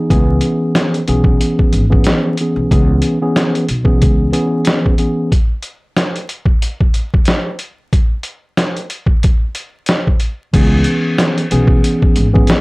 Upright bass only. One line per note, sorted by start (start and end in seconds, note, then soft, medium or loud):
0.10 0.37 C#2 loud
1.08 1.35 B1 medium
1.73 2.00 G#1 medium
2.56 2.69 B1 medium
2.71 2.98 C#2 loud
3.69 4.02 B1 medium
4.02 4.29 C#2 loud
10.54 10.81 C#2 loud
11.51 11.79 B1 medium
12.16 12.44 G#1 medium